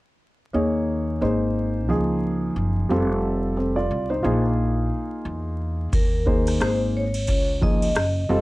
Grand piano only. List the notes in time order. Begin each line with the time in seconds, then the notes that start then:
0.53 A#3 D#4 G#4 C#5
1.21 A#3 D#4 G#4 C5
1.89 F3 A#3 D#4 G#4
2.89 G3 C4 F4 A4
3.57 C4 A4
3.76 F4 D5
4.10 D#4 C5
4.23 A#3 D#4 F4 G#4
6.26 A#3 D#4 G#4 C5
6.60 A#3 D#4 G#4 C5
7.61 F3 A#3 D#4 G#4
8.29 G3 C4 F4 A4